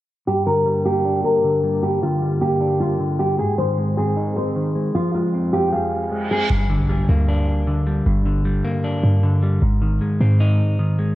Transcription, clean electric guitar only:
0.27 1.24 G2 medium
0.46 1.43 D3 medium
0.66 1.62 G3 medium
0.85 1.83 A#3 medium
1.05 2.02 D4 medium
1.44 2.01 D3 medium
1.63 2.21 G3 medium
1.83 2.80 G2 medium
2.02 2.99 D3 medium
2.22 3.18 G3 medium
2.41 3.39 A#3 medium
2.61 3.39 D4 loud
3.00 3.39 D3 medium
3.19 3.39 G3 medium
3.39 4.36 G#2 medium
3.58 4.54 D#3 medium
3.78 4.74 G#3 medium
3.97 4.95 C4 medium
4.17 4.95 D#4 loud
4.55 4.94 D#3 medium
4.75 4.95 G#3 medium
4.95 5.92 F3 medium
5.14 6.10 G#3 medium
5.33 6.30 C4 medium
5.53 6.50 F4 medium
5.72 6.50 F5 loud
6.11 6.50 G#3 medium
6.31 6.50 C4 medium
6.51 7.48 G2 medium
6.70 7.66 D3 medium
6.89 7.86 G3 medium
7.09 8.06 A#3 medium
7.28 8.26 D4 loud
7.67 8.24 D3 medium
7.87 8.44 G3 medium
8.06 9.04 G2 medium
8.26 9.22 D3 medium
8.45 9.41 G3 medium
8.65 9.62 A#3 medium
8.84 9.62 D4 loud
9.23 9.62 D3 medium
9.43 9.62 G3 medium
9.62 10.59 G#2 medium
9.82 10.78 D#3 medium
10.01 10.97 G#3 medium
10.21 11.15 C4 medium
10.40 11.15 D#4 loud
10.79 11.15 D#3 medium
10.99 11.15 G#3 medium

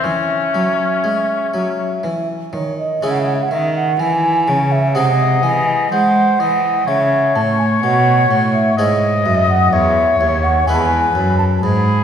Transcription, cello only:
0.05 0.51 E3 medium
0.55 1.01 F#3 medium
1.05 1.51 G#3 medium
1.54 2.00 F#3 medium
2.04 2.50 E3 medium
2.53 2.99 D#3 medium
3.03 3.48 C#3 medium
3.52 3.99 D#3 medium
4.00 4.50 E3 medium
4.48 4.98 C#3 medium
4.96 5.44 C3 medium
5.44 5.91 E3 medium
5.93 6.39 G#3 medium
6.41 6.87 E3 medium
6.88 7.37 C#3 medium
7.36 7.82 A2 medium
7.83 8.29 B2 medium
8.31 8.77 A2 medium
8.78 9.26 G#2 medium
9.25 9.72 F#2 medium
9.73 10.19 E2 medium
10.20 10.67 D#2 medium
10.68 11.14 E2 medium
11.15 11.62 F#2 medium
11.62 12.04 G#2 medium

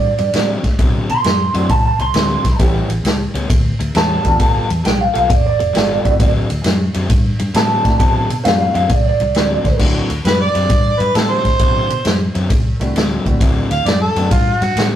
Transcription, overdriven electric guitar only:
0.19 muted overdriven electric guitar stroke medium
0.34 0.64 D3 medium
0.34 0.64 F#3 medium
0.34 0.64 C4 loud
0.34 0.63 E4 loud
0.65 muted overdriven electric guitar stroke medium
0.79 1.09 D3 medium
0.79 1.09 F#3 medium
0.79 1.09 C4 medium
0.79 1.09 E4 loud
1.10 muted overdriven electric guitar stroke medium
1.25 muted overdriven electric guitar stroke soft
1.55 1.69 D3 medium
1.55 1.70 F#3 medium
1.55 1.70 C4 medium
1.55 1.70 E4 loud
1.70 muted overdriven electric guitar stroke soft
2.00 muted overdriven electric guitar stroke medium
2.15 2.45 D3 medium
2.15 2.45 F#3 medium
2.15 2.45 C4 loud
2.15 2.44 E4 loud
2.46 muted overdriven electric guitar stroke medium
2.59 2.90 A2 medium
2.59 2.90 G3 medium
2.59 2.90 B3 loud
2.59 2.90 C#4 loud
2.91 muted overdriven electric guitar stroke soft
3.05 muted overdriven electric guitar stroke soft
3.34 3.48 A2 medium
3.34 3.48 G3 medium
3.34 3.48 B3 medium
3.34 3.49 C#4 medium
3.49 muted overdriven electric guitar stroke soft
3.80 muted overdriven electric guitar stroke medium
3.95 4.25 A2 medium
3.95 4.24 G3 medium
3.95 4.24 B3 medium
3.95 4.24 C#4 loud
4.25 muted overdriven electric guitar stroke medium
4.39 4.70 G3 medium
4.39 4.69 B3 loud
4.39 4.69 F4 medium
4.39 4.68 A4 loud
4.70 muted overdriven electric guitar stroke medium
4.84 muted overdriven electric guitar stroke soft
5.14 5.28 G3 medium
5.14 5.28 B3 medium
5.14 5.29 F4 loud
5.14 5.29 A4 loud
5.29 muted overdriven electric guitar stroke medium
5.60 muted overdriven electric guitar stroke medium
5.74 6.04 G3 medium
5.74 6.05 B3 medium
5.74 6.05 F4 medium
5.74 6.04 A4 medium
6.05 muted overdriven electric guitar stroke soft
6.20 6.50 D3 medium
6.20 6.49 F#3 medium
6.20 6.49 C4 loud
6.20 6.49 E4 loud
6.50 muted overdriven electric guitar stroke medium
6.64 muted overdriven electric guitar stroke soft
6.95 7.08 D3 medium
6.95 7.09 F#3 medium
6.95 7.09 C4 medium
6.95 7.09 E4 loud
7.10 muted overdriven electric guitar stroke soft
7.40 muted overdriven electric guitar stroke medium
7.54 7.85 D3 medium
7.54 7.84 F#3 loud
7.54 7.84 C4 loud
7.54 7.84 E4 loud
7.85 muted overdriven electric guitar stroke medium
7.99 8.30 D3 medium
7.99 8.30 F#3 medium
7.99 8.29 C4 loud
7.99 8.29 E4 medium
8.30 muted overdriven electric guitar stroke medium
8.45 muted overdriven electric guitar stroke soft
8.75 8.89 D3 medium
8.75 8.90 F#3 medium
8.75 8.90 C4 loud
8.75 8.90 E4 loud
8.91 muted overdriven electric guitar stroke soft
9.21 muted overdriven electric guitar stroke medium
9.36 9.66 D3 loud
9.36 9.66 F#3 medium
9.36 9.65 C4 loud
9.36 9.65 E4 loud
9.66 muted overdriven electric guitar stroke medium
9.80 10.10 D3 medium
9.80 10.10 F#3 medium
9.80 10.10 C4 loud
9.80 10.09 E4 medium
10.11 muted overdriven electric guitar stroke soft
10.25 muted overdriven electric guitar stroke soft
10.55 10.70 D3 medium
10.55 10.70 F#3 medium
10.55 10.70 C4 loud
10.55 10.70 E4 loud
10.71 muted overdriven electric guitar stroke soft
11.01 muted overdriven electric guitar stroke medium
11.15 11.45 D3 medium
11.15 11.45 F#3 loud
11.15 11.45 C4 medium
11.15 11.44 E4 medium
11.45 muted overdriven electric guitar stroke medium
11.60 11.90 D3 medium
11.60 11.90 F#3 medium
11.60 11.90 C4 medium
11.60 11.89 E4 loud
11.90 muted overdriven electric guitar stroke medium
12.05 muted overdriven electric guitar stroke soft
12.35 12.50 D3 medium
12.35 12.50 F#3 medium
12.35 12.50 C4 loud
12.35 12.50 E4 loud
12.51 muted overdriven electric guitar stroke soft
12.81 muted overdriven electric guitar stroke medium
12.96 13.26 D3 medium
12.96 13.26 F#3 loud
12.96 13.25 C4 medium
12.96 13.25 E4 loud
13.26 muted overdriven electric guitar stroke medium
13.41 13.71 D3 medium
13.41 13.71 F#3 medium
13.41 13.70 C4 medium
13.41 13.70 E4 loud
13.71 muted overdriven electric guitar stroke soft
13.86 muted overdriven electric guitar stroke medium
14.16 14.30 D3 medium
14.16 14.30 F#3 medium
14.16 14.31 C4 loud
14.16 14.31 E4 medium
14.31 muted overdriven electric guitar stroke soft
14.62 muted overdriven electric guitar stroke medium
14.77 14.96 D3 medium
14.77 14.96 F#3 loud
14.77 14.96 C4 loud
14.77 14.96 E4 loud

